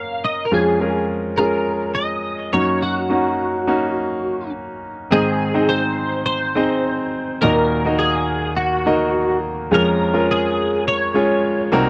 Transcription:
Already playing: F#2 C#3 A#3 C#4 F#4 A#4 F5
0.24 D#5
0.45 A#4
0.51 F2 F3 G#3 C#4 F4 G#4
0.80 G#3 C#4 F4 A#4
1.38 G#3 C#4 F4 G#4 A#4
1.95 D#5
2.53 F#2 F#3 A#3 C#4 D#4 F#4 C#5
2.82 F#4
3.10 A#3 C#4 D#4 F#4
3.67 A#3 C#4 D#4 F#4
5.11 G#2 D#3 C4 D#4 G#4 C5 D#5
5.54 C4 D#4 G#4 C5 D#5
5.69 C5
6.26 C5
6.55 C4 D#4 G#4 C5 D#5
7.42 D#2 A#2 A#3 D#4 F#4 A#4 D#5
7.85 A#3 D#4 F#4 A#4 D#5
7.99 G#4
8.57 F#4
8.86 A#3 D#4 F#4 A#4 D#5
9.71 F2 F3 G#3 C#4 F4 G#4 A#4 C#5
10.13 G#3 C#4 F4 G#4 A#4
10.31 G#4
10.88 C#5
11.14 G#3 C#4 F4 G#4 C#5
11.72 C2 C3 A#3 C4 D#4 F#4 A#4

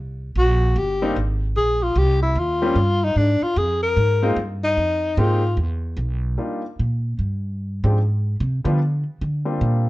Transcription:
Already playing: C2
0.35 A#1 F#4
0.76 G1 G4
1.02 G3 A#3 C4 D4 D#4
1.16 G#1
1.56 A#1 G#4
1.83 F4
1.95 C2 G4
2.22 E4
2.35 D#2 F4
2.62 G3 A#3 C4 C#4 F4
2.75 G2
3.04 D#4
3.16 G#2 D4
3.42 F4, muted upright bass stroke
3.56 F2 G#4
3.83 A#4
3.96 G#2
4.22 G#3 A#3 C4 D#4 F4
4.36 G2
4.64 D#4
4.77 F2
5.17 G#2 G#3 A#3 C4 D#4 F4 G4
5.57 E2
5.97 B1
6.38 G3 A#3 D4 D#4 F4
6.79 A#2
7.19 G2
7.84 G#2 F3 G#3 C4 D4 G4
8.40 C3
8.64 D3 F3 G3 B3 D4 F4
9.21 D3
9.45 G3 A#3 C4 D4 F4
9.61 A#2

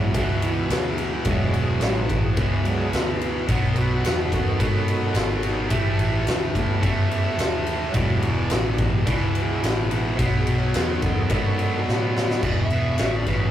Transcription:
Already playing: A1 E2 B2 E3 F#3 G#3 D4
0.03 E4
0.13 C#2 E2 B2 E3 F#4, kick, ride
0.42 E4, ride
0.70 D2, snare, ride
0.98 ride
1.25 E1 E2 B2 E3 F#3 G#3 D4 C#5, kick, ride
1.44 B4
1.54 E1, ride
1.63 G#4
1.78 A1 C5, ride
1.82 C#5, snare
2.02 B4
2.09 A1, kick, ride
2.17 G#4
2.32 C5
2.37 C#2 E2 B2 E3 C#5, kick, ride
2.56 B4
2.63 F#3 G#3 D4, ride
2.73 G#4
2.93 D2 B4, snare, ride
3.21 ride
3.48 B1 B2 F#3 B3, kick, ride
3.74 B1 A#4, ride
3.78 F#4 B4
4.03 E2 F#4 B4, snare, ride
4.32 E2 D#3 C#4 F#4 A4 B4, kick, ride
4.58 G#2 B2 F#3 B3 F#4 A4, kick, ride
4.88 F#4 A4, ride
5.14 G#1 F#4, snare, ride
5.18 A4
5.43 D#4 G4, ride
5.69 A1 A2 E3 A3, kick, ride
5.73 E4 G4
5.98 A1 E4 G4, ride
6.25 D2 F#4, snare, ride
6.30 G4
6.55 D2 A3 B3 C#4, kick, ride
6.80 F#2 A2 E3 A3, kick, ride
7.11 ride
7.38 D#2, snare, ride
7.66 ride
7.90 E2 F#3 G#3 C#5
7.94 E1 B2 E3 D4 D5, kick, ride
8.13 G4
8.22 E1, ride
8.32 D5
8.50 A1 B4, snare, ride
8.68 D5
8.78 A1, kick, ride
8.87 G4
9.04 C#2 E2 B2 D5, kick, ride
9.09 E3
9.23 B4
9.35 ride
9.42 E4 G#4
9.63 A1, snare, ride
9.91 ride
10.14 B2 C5
10.19 B1 F#3 B3 C#5, kick, ride
10.38 G#4
10.47 B1, ride
10.53 C5
10.58 C#5
10.74 E2 G#4, snare, ride
10.89 C5
10.94 C#5
11.02 E2 D#3 C#4 A4, kick, ride
11.13 G#4
11.30 G#2 B2 F#3 B3 D4 F#4, kick, ride
11.59 ride
11.88 A2, snare
12.17 snare
12.30 snare
12.40 E1 E2 B2 D4 F#4 G#4, kick, crash
12.44 D5
12.58 E5
12.70 E1 E2 B2, ride
12.84 D4 F#4 B4
12.98 A1 E2 C#3, snare, ride
13.15 D5
13.26 A1 E2 C#3 B4, kick, snare, ride

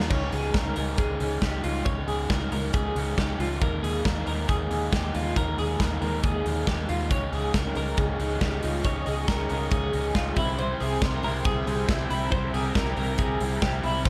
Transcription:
Already playing: A#3 D#4 F4
0.00 snare
0.09 C#2 C#3 G#3 C#4 D#4 C#5, kick, crash
0.32 C#2 G#4, open hi-hat
0.54 C#2 A#4, kick, snare, closed hi-hat
0.64 G#3 C#4 D#4
0.75 C#2 C#3 G#3 C#4 D#4 A#4, open hi-hat
0.98 C#2 G#4, kick, closed hi-hat
1.20 C#2 C#3 G#3 C#4 D#4, open hi-hat
1.42 C#2 C#3 G#3 C#4 D#4 G4, kick, snare, closed hi-hat
1.63 C#2 C#3 G#3 C#4 D#4 F4, open hi-hat
1.85 C#2 C#3 G#3 C#4 D#4 C#5, kick, closed hi-hat
2.08 C#2 G#4, open hi-hat
2.30 C#2 A#4, kick, snare, closed hi-hat
2.40 G#3 C#4 D#4
2.51 C#2 C#3 G#3 C#4 D#4 A#4, open hi-hat
2.73 G#4, kick, closed hi-hat
2.95 C#2 C#3 G#3 C#4 D#4, open hi-hat
3.17 C#2 C#3 G#3 C#4 D#4 G4, kick, snare, closed hi-hat
3.39 C#2 C#3 G#3 C#4 D#4 F4, open hi-hat
3.60 D#2 D#3 G#3 A#3 D#4 A#4, kick, closed hi-hat
3.83 D#2 G#4, open hi-hat
4.05 D#2 A#4, kick, snare, closed hi-hat
4.15 G#3 A#3 D#4
4.26 D#2 D#3 G#3 A#3 D#4 A#4, open hi-hat
4.49 D#2 G#4, kick, closed hi-hat
4.69 D#2 D#3 G#3 A#3 D#4, open hi-hat
4.91 D#2 D#3 G#3 A#3 D#4 G4, kick, snare, closed hi-hat
5.13 D#2 D#3 G#3 A#3 D#4 F4, open hi-hat
5.35 D#2 D#3 G#3 A#3 D#4 A#4, kick, closed hi-hat
5.58 D#2 G#4, open hi-hat
5.80 D#2 A#4, kick, snare, closed hi-hat
5.90 G#3 A#3 D#4
6.01 D#2 D#3 G#3 A#3 D#4 A#4, open hi-hat
6.23 D#2 G#4, kick, closed hi-hat
6.44 D#2 D#3 G#3 A#3 D#4, open hi-hat
6.66 D#2 D#3 G#3 A#3 D#4 G4, kick, snare, closed hi-hat
6.88 D#2 D#3 G#3 A#3 D#4 F4, open hi-hat
7.10 C#2 C#3 G#3 C#4 D#4 G#4 C#5 D#5 C#6, kick, closed hi-hat
7.32 C#2 G#4, open hi-hat
7.54 C#2 A#4, kick, snare, closed hi-hat
7.64 G#3 C#4 D#4
7.74 C#2 C#3 G#3 C#4 D#4 A#4, open hi-hat
7.97 C#2 G#4, kick, closed hi-hat
8.18 C#2 C#3 G#3 C#4 D#4, open hi-hat
8.39 C#2 C#3 G#3 C#4 D#4 G4, kick, snare, closed hi-hat
8.61 C#2 C#3 G#3 C#4 D#4 F4, open hi-hat
8.84 C#2 C#3 G#3 C#4 D#4 C#5, kick, closed hi-hat
9.06 C#2 G#4, open hi-hat
9.28 A#4, kick, snare, closed hi-hat
9.38 G#3 C#4 D#4
9.49 C#2 C#3 G#3 C#4 D#4 A#4, open hi-hat
9.71 C#2 G#4, kick, closed hi-hat
9.92 C#2 C#3 G#3 C#4 D#4, open hi-hat
10.14 C#2 C#3 G#3 C#4 D#4 F4, kick, snare, closed hi-hat
10.35 C2 C3 G3 C4 E4 E5 G5 C6, kick, open hi-hat
10.57 C3 G3 C4 E4 C5, closed hi-hat
10.80 C2 G#4, open hi-hat
11.02 C2 A#4, kick, snare, closed hi-hat
11.12 G3 C4 E4
11.22 C2 C3 G3 C4 E4 A#4, open hi-hat
11.45 C2 G#4, kick, closed hi-hat
11.65 C2 C3 G3 C4 E4, open hi-hat
11.88 C2 C3 G3 C4 E4 G4, kick, snare, closed hi-hat
12.10 C2 C3 G3 C4 E4 A#5, open hi-hat
12.32 C2 C3 G3 C4 E4 C5, kick, closed hi-hat
12.54 C2 G#4, open hi-hat
12.75 C2 A#4, kick, snare, closed hi-hat
12.85 G3 C4 E4
12.96 C2 C3 G3 C4 E4 A#4, open hi-hat
13.18 C2 G#4, kick, closed hi-hat
13.40 C2 C3 G3 C4 E4, open hi-hat
13.62 C2 C3 G3 C4 E4 G4, kick, snare, closed hi-hat
13.82 C2 C3 G3 C4 E4, open hi-hat
14.04 G#1 G#2 D#3 G#3 C4 G#4 C5 D#5 C6, kick, crash

